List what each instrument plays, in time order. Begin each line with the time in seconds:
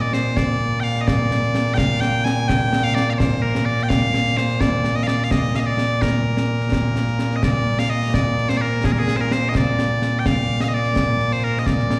Already playing: bagpipes A#2 A#3
0.01 bagpipes D5
0.13 bagpipes C5, snare
0.37 bagpipes D5, concert bass drum, snare
0.80 bagpipes F5 G5
0.96 snare
1.01 bagpipes D#5
1.07 bagpipes D5, concert bass drum, snare
1.31 snare
1.43 snare
1.55 snare
1.67 snare
1.74 bagpipes F5 G5, concert bass drum, snare
2.00 bagpipes G5, snare
2.24 bagpipes G#5, snare
2.48 bagpipes G5, concert bass drum, snare
2.73 snare
2.84 bagpipes F5
2.95 bagpipes D5, snare
3.10 bagpipes D5 F5
3.18 bagpipes C5, concert bass drum, snare
3.42 bagpipes A#4
3.55 snare
3.65 bagpipes D5
3.79 snare
3.83 bagpipes G5
3.89 bagpipes F5, concert bass drum, snare
4.14 snare
4.26 snare
4.37 bagpipes C5, snare
4.49 snare
4.60 bagpipes D5, concert bass drum, snare
4.84 snare
4.95 bagpipes D#5
5.03 bagpipes D5 F5
5.08 snare
5.24 bagpipes F5
5.31 bagpipes D#5, concert bass drum, snare
5.55 bagpipes F5, snare
5.60 bagpipes D#5
5.66 bagpipes D5
5.78 snare
6.02 bagpipes A#4, concert bass drum, snare
6.37 snare
6.61 snare
6.72 concert bass drum, snare
6.96 snare
7.08 snare
7.19 snare
7.31 snare
7.36 bagpipes D#5
7.43 bagpipes D5, concert bass drum, snare
7.79 bagpipes F5, snare
7.90 bagpipes D#5
8.02 snare
8.14 bagpipes D5, concert bass drum, snare
8.38 snare
8.49 bagpipes C5, snare
8.57 bagpipes D5
8.61 bagpipes A#4
8.84 bagpipes G#4, concert bass drum, snare
8.92 bagpipes A#4, snare
8.99 bagpipes G#4
9.08 snare
9.17 bagpipes C5, snare
9.21 bagpipes A#4
9.31 bagpipes C5, snare
9.49 bagpipes D#5
9.55 bagpipes D5, concert bass drum, snare
9.79 snare
10.02 snare
10.19 bagpipes G5
10.26 bagpipes F5, concert bass drum, snare
10.60 bagpipes D#5 F5, snare
10.69 bagpipes D#5
10.74 bagpipes D5
10.84 snare
10.96 concert bass drum, snare
11.20 snare
11.32 bagpipes C5
11.44 bagpipes A#4
11.59 bagpipes D#5
11.66 bagpipes D5, concert bass drum, snare
11.79 snare
11.90 snare